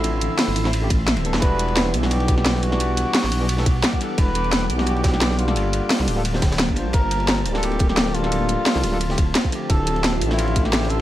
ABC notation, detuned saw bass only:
X:1
M:4/4
L:1/16
Q:"Swing 16ths" 1/4=174
K:Ephr
V:1 name="Detuned saw bass" clef=bass
A,,,3 z2 G,,, A,,,6- A,,, D,,,2 F,,, | E,,,6 B,,,6 B,,,4- | B,,,3 z2 A,,, B,,,6 z4 | E,,,6 B,,,6 B,,,4 |
G,,,3 z2 C,, D,,,6- D,,, G,,,2 _B,,, | G,,,6 D,,,6 D,,,4- | D,,,3 z2 C,, D,,,6 z4 | D,,,6 A,,,6 A,,,4 |]